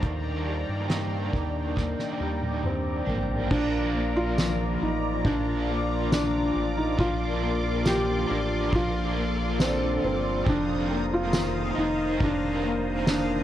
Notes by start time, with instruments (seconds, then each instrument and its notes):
Already playing: clean electric guitar F3 A3 D4, synth texture C5 F5, analog synth pad D5 A#5
0.01 analog synth bass D#2, analog synth pad D#3 G5, overdriven electric guitar D#3 G3 A#3, clean electric guitar D#3, kick, closed hi-hat
0.06 overdriven electric guitar D4
0.46 clean electric guitar G3
0.69 analog synth bass G2
0.88 overdriven electric guitar D#3 G3 A#3, clean electric guitar A#3, snare, closed hi-hat
0.94 overdriven electric guitar D4
1.33 analog synth bass D#2, clean electric guitar D4, kick
1.76 overdriven electric guitar D#3 G3 A#3 D4, clean electric guitar A#3, synth texture A#4, kick, snare
1.99 snare
2.20 analog synth bass D#2, clean electric guitar G3
2.42 high tom
2.64 felt piano C4, clean electric guitar D4, mid tom
3.06 analog synth bass A1, clean electric guitar A#3, overdriven electric guitar A#3 D4, floor tom
3.12 overdriven electric guitar G3
3.29 floor tom
3.50 analog synth bass A#1, overdriven electric guitar F3, felt piano D4, clean electric guitar D4, analog synth pad F4 D5 A#5 D6, kick, crash
3.55 overdriven electric guitar A#3
3.94 clean electric guitar A#3
4.16 felt piano F4
4.38 clean electric guitar F3, synth texture F4, snare, tambourine
4.82 analog synth bass A1, felt piano D#4
5.25 analog synth bass A#1, clean electric guitar F3, overdriven electric guitar F3 A#3, felt piano D4, kick
5.31 overdriven electric guitar D4
5.69 clean electric guitar A#3
6.12 felt piano D4, clean electric guitar D4, synth texture A#4, snare, tambourine
6.56 analog synth bass A1, clean electric guitar F3
6.77 felt piano D#4
6.97 analog synth bass A#1, overdriven electric guitar A#2 F3 A#3 D4, clean electric guitar D4, felt piano F4, analog synth pad C6, kick
7.42 clean electric guitar A#3, synth texture A4
7.85 clean electric guitar F3, felt piano G4, snare, tambourine
8.27 analog synth bass A1, overdriven electric guitar A#3 D4, clean electric guitar D4
8.33 overdriven electric guitar F3
8.69 analog synth bass A#1, overdriven electric guitar A#2 F3, clean electric guitar F3, kick, ride
8.75 overdriven electric guitar A#3 D4, felt piano F4
9.16 clean electric guitar A#3
9.60 felt piano C4, clean electric guitar D4, snare, tambourine
10.03 analog synth bass G1, clean electric guitar F3, felt piano C4
10.44 analog synth bass F1, overdriven electric guitar F2 C3 D#3 A#3, clean electric guitar F2, analog synth pad C5 A#5 D#6, kick
10.49 felt piano D4
10.89 clean electric guitar A#3, synth texture F5
11.14 felt piano F4
11.33 clean electric guitar D#3, snare, tambourine
11.75 analog synth bass F1, overdriven electric guitar A#3 D#4, felt piano D#4
11.81 overdriven electric guitar D#3
12.18 analog synth bass F1, overdriven electric guitar F2 C3, clean electric guitar D#3, kick
12.22 overdriven electric guitar D#3 A#3, felt piano D4
12.64 clean electric guitar A#3
13.07 felt piano D4, snare, tambourine